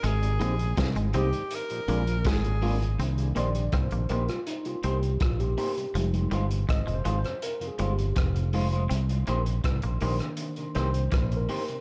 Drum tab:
HH |xxxxxxxxxxxxxxox|xxxxxxxxxxxxxxox|xxxxxxxxxxxxxxox|xxxxxxoxxxxxxxox|
SD |----o-------o---|----r--r----r---|----r--r----r---|----r--r--r-r---|
BD |----o-------o---|----o-------o---|----o-------o---|----o-------o---|